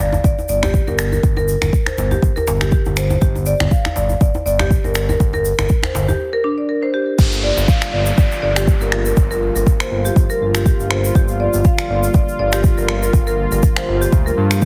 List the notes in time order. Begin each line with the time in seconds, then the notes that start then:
0.00 G1 D5
0.13 djembe tone, shaker
0.24 G1 D5, kick, shaker
0.38 djembe tone, shaker
0.49 G1 D5, shaker
0.63 G4, finger snap, djembe slap, djembe tone, shaker
0.74 kick, shaker
0.87 G1 A#4, djembe tone, shaker
0.99 finger snap, shaker
1.12 A#4, djembe tone, shaker
1.23 G1, kick, shaker
1.36 A#4, djembe tone, shaker
1.48 shaker
1.62 G1 A#4, finger snap, djembe tone, shaker
1.73 kick, shaker
1.86 C5, finger snap, djembe tone, shaker
1.98 G1, djembe slap, shaker
2.11 G4, djembe tone, shaker
2.22 G1, kick, shaker
2.36 A#4, djembe tone, shaker
2.47 G1, djembe slap, shaker
2.61 G4, finger snap, djembe tone, shaker
2.72 G4, kick, shaker
2.85 G1, djembe tone, shaker
2.96 C5, finger snap, shaker
3.10 djembe tone, shaker
3.22 G1 G4, kick, shaker
3.35 djembe tone, shaker
3.46 D5, shaker
3.60 G1, finger snap, djembe tone, shaker
3.71 F5, kick, shaker
3.85 finger snap, djembe tone, shaker
3.96 G1 D5, djembe slap, shaker
4.09 djembe tone, shaker
4.21 G1 D5, kick, shaker
4.34 djembe tone, shaker
4.46 G1 D5, shaker
4.59 G4, finger snap, djembe slap, djembe tone, shaker
4.71 kick, shaker
4.84 G1 A#4, djembe tone, shaker
4.94 finger snap, shaker
5.09 A#4, djembe tone, shaker
5.20 G1, kick, shaker
5.33 A#4, djembe tone, shaker
5.45 shaker
5.59 G1 A#4, finger snap, djembe tone, shaker
5.69 kick, shaker
5.83 C5, finger snap, djembe tone, shaker
5.95 G1, djembe slap, shaker
6.08 G4, djembe tone, shaker
6.33 A#4
6.44 D4
6.58 D5
6.69 A#4
6.83 C5
6.94 G4
7.18 G1 D3 F3 G3 A#3 F4 G4, kick, crash, downlifter, shaker
7.32 shaker
7.43 D5
7.57 G1, shaker
7.68 F5, kick, shaker
7.82 finger snap, shaker
7.93 G1 D5
8.06 shaker
8.18 G1 D5, kick, shaker
8.32 shaker
8.42 G1 D5
8.56 G4, finger snap, shaker
8.67 kick, shaker
8.81 G1 A#4, shaker
8.92 finger snap
9.05 A#4, shaker
9.17 G1, kick, shaker
9.31 A#4, shaker
9.55 G1 A#4, shaker
9.67 kick, shaker
9.80 C5, finger snap, shaker
9.91 G1
10.05 G4, shaker
10.16 G1, kick, shaker
10.30 A#4, shaker
10.41 G1
10.55 G4, finger snap, shaker
10.66 G4, kick, shaker
10.79 G1, shaker
10.90 C5, finger snap
11.04 shaker
11.15 G1 G4, kick, shaker
11.28 shaker
11.40 D5
11.53 G1, shaker
11.65 F5, kick, shaker
11.78 finger snap, shaker
11.90 G1 D5
12.03 shaker
12.14 G1 D5, kick, shaker
12.29 shaker
12.39 G1 D5
12.52 G4, finger snap, shaker
12.64 kick, shaker
12.78 G1 A#4, shaker
12.88 finger snap
13.02 A#4, shaker
13.13 G1, kick, shaker
13.27 A#4, shaker
13.52 G1 A#4, shaker
13.63 kick, shaker
13.76 C5, finger snap, shaker
13.88 G1
14.01 G4, shaker
14.12 D2, kick, shaker
14.26 A#4, shaker
14.37 G2
14.51 G4, finger snap, shaker
14.62 shaker